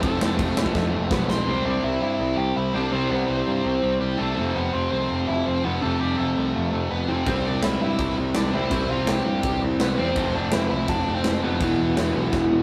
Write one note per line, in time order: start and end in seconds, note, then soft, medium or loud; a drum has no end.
0.02 0.18 F1 loud
0.02 1.46 F2 medium
0.02 1.44 C3 loud
0.02 1.47 F3 loud
0.02 1.26 A3 medium
0.02 1.25 A4 medium
0.02 kick loud
0.02 crash medium
0.21 0.36 F1 medium
0.21 0.39 F2 loud
0.21 0.39 C3 medium
0.21 0.39 F3 loud
0.21 snare loud
0.39 0.69 F1 loud
0.39 0.56 F2 loud
0.39 0.56 C3 loud
0.39 0.57 F3 loud
0.39 kick loud
0.39 crash medium
0.57 0.74 F2 medium
0.57 0.74 C3 medium
0.57 0.75 F3 medium
0.57 snare loud
0.66 kick medium
0.75 0.90 F2 loud
0.75 0.92 F2 medium
0.75 0.92 C3 loud
0.75 0.93 F3 loud
0.75 kick loud
0.75 snare medium
0.92 1.08 F1 loud
0.92 1.09 F2 medium
0.92 1.10 C3 medium
0.92 1.11 F3 medium
1.11 1.41 B1 medium
1.11 1.27 F2 loud
1.11 1.28 C3 loud
1.11 1.28 F3 loud
1.11 1.28 B3 medium
1.11 1.29 B4 loud
1.11 kick loud
1.11 snare loud
1.28 1.46 F2 medium
1.28 1.44 C3 medium
1.28 1.46 F3 loud
1.28 1.63 C4 medium
1.28 1.65 C5 loud
1.28 snare loud
1.46 1.60 C2 loud
1.46 2.72 C3 loud
1.46 2.73 G3 loud
1.46 2.72 C4 loud
1.65 1.78 C2 medium
1.65 1.83 D4 medium
1.65 1.84 D5 medium
1.83 1.96 C2 medium
1.83 2.01 E4 medium
1.83 2.01 E5 loud
2.02 2.14 G2 medium
2.02 2.36 E4 medium
2.02 2.39 E5 medium
2.20 2.32 C2 medium
2.37 2.50 C2 loud
2.37 2.55 G4 medium
2.37 2.54 G5 loud
2.56 2.69 C2 medium
2.56 2.73 E4 medium
2.56 2.74 E5 medium
2.73 2.87 C2 medium
2.73 2.90 C3 medium
2.73 2.91 G3 medium
2.73 2.93 C4 medium
2.73 2.92 D4 medium
2.73 2.92 D5 medium
2.91 3.05 C2 loud
2.91 4.17 C3 loud
2.91 4.18 G3 medium
2.91 3.10 C4 medium
2.91 4.17 C4 loud
2.91 3.09 C5 loud
3.09 3.23 C2 medium
3.09 3.27 B3 medium
3.09 3.28 B4 medium
3.28 3.41 C2 medium
3.28 3.97 C4 medium
3.28 3.97 C5 medium
3.47 3.60 G2 medium
3.64 3.77 C2 loud
3.83 3.96 C2 medium
4.01 4.14 C2 medium
4.01 4.18 G3 medium
4.01 4.18 G4 medium
4.17 4.32 C2 medium
4.17 4.36 C3 medium
4.17 4.36 G3 medium
4.17 4.53 A3 medium
4.17 7.29 C4 medium
4.17 4.56 A4 loud
4.36 4.50 F1 loud
4.36 5.62 F2 loud
4.36 5.63 C3 loud
4.36 5.62 F3 loud
4.55 4.68 F1 medium
4.55 4.72 B3 medium
4.55 4.73 B4 medium
4.73 4.86 F1 medium
4.73 4.90 C4 medium
4.73 4.90 C5 medium
4.91 5.05 C2 medium
4.91 5.26 C4 medium
4.91 5.29 C5 loud
5.10 5.23 F1 medium
5.27 5.41 F1 loud
5.27 5.45 E4 medium
5.27 5.46 E5 loud
5.46 5.59 F1 medium
5.46 5.63 C4 medium
5.46 5.64 C5 medium
5.63 5.77 F1 medium
5.63 5.80 F2 medium
5.63 5.81 C3 medium
5.63 5.80 F3 medium
5.63 5.81 B3 medium
5.63 5.83 B4 medium
5.81 5.96 F1 loud
5.81 7.07 F2 loud
5.81 7.08 C3 loud
5.81 7.07 F3 loud
5.81 5.99 A3 medium
5.81 6.00 A4 medium
6.00 6.13 F1 medium
6.00 6.17 G3 medium
6.00 6.17 G4 medium
6.18 6.32 F1 loud
6.18 6.87 A3 medium
6.18 6.93 A4 medium
6.37 6.50 C2 medium
6.55 6.68 F1 loud
6.72 6.85 F1 medium
6.91 7.03 F1 medium
6.91 7.08 B3 medium
6.91 7.09 B4 loud
7.08 7.21 F1 medium
7.08 7.27 F2 medium
7.08 7.25 C3 medium
7.08 7.25 F3 medium
7.08 7.43 C4 medium
7.08 7.45 C5 medium
7.26 7.40 C2 medium
7.26 8.52 C3 medium
7.26 8.53 G3 loud
7.26 8.53 C4 loud
7.26 kick loud
7.26 crash medium
7.44 7.57 C2 medium
7.44 7.62 D4 medium
7.44 7.64 D5 medium
7.62 7.76 C2 medium
7.62 7.80 E4 medium
7.62 7.81 E5 medium
7.62 snare loud
7.62 crash medium
7.80 7.93 G2 medium
7.80 8.16 E4 medium
7.80 8.15 E5 loud
7.99 8.12 C2 loud
7.99 kick loud
7.99 crash medium
8.17 8.30 C2 loud
8.35 8.48 C2 medium
8.35 8.52 D4 medium
8.35 8.54 D5 medium
8.35 snare loud
8.35 crash medium
8.53 8.66 C2 medium
8.53 8.69 C3 medium
8.53 8.71 G3 medium
8.53 8.73 C4 medium
8.53 8.88 E4 medium
8.53 8.91 E5 medium
8.71 8.84 C2 loud
8.71 9.97 C3 loud
8.71 9.98 G3 medium
8.71 9.96 C4 loud
8.71 kick loud
8.71 crash medium
8.89 9.02 C2 medium
8.89 9.07 F4 medium
8.89 9.09 F5 medium
9.07 9.21 C2 loud
9.07 9.25 G4 medium
9.07 9.25 G5 medium
9.07 snare loud
9.07 crash medium
9.25 9.39 G2 medium
9.25 9.60 G4 medium
9.25 9.60 G5 loud
9.43 9.57 C2 loud
9.43 kick loud
9.43 crash medium
9.62 9.75 C2 medium
9.80 9.93 C2 medium
9.80 9.98 B3 medium
9.80 9.99 B4 medium
9.80 snare loud
9.80 crash medium
9.98 10.11 E2 medium
9.98 10.16 C3 medium
9.98 10.16 G3 medium
9.98 10.15 C4 medium
9.98 10.32 C4 medium
9.98 10.36 C5 medium
10.16 10.29 F1 loud
10.16 11.42 F2 loud
10.16 11.43 C3 loud
10.16 11.41 F3 loud
10.16 kick loud
10.16 crash medium
10.35 10.48 F1 loud
10.35 10.52 D4 medium
10.35 10.53 D5 medium
10.52 10.66 F1 loud
10.52 10.69 E4 medium
10.52 10.69 E5 medium
10.52 snare loud
10.52 crash medium
10.70 10.84 C2 medium
10.70 10.88 E4 medium
10.70 10.90 E5 medium
10.88 11.02 F1 loud
10.88 11.14 D4 medium
10.88 11.17 D5 medium
10.88 kick loud
10.88 crash medium
11.07 11.20 F1 loud
11.15 11.41 C4 medium
11.15 11.41 C5 medium
11.24 11.38 F1 medium
11.24 snare loud
11.24 crash medium
11.42 11.56 F1 loud
11.42 11.59 F2 medium
11.42 11.61 C3 medium
11.42 11.60 F3 medium
11.42 12.63 B3 medium
11.42 12.63 B4 medium
11.60 11.74 E1 medium
11.60 12.63 E2 loud
11.60 12.63 B2 loud
11.60 12.63 E3 loud
11.60 kick loud
11.60 crash medium
11.78 11.92 E1 loud
11.97 12.10 E1 loud
11.97 snare loud
11.97 crash medium
12.14 12.28 B1 medium
12.32 12.46 E1 loud
12.32 kick loud
12.32 snare medium
12.51 12.63 E1 loud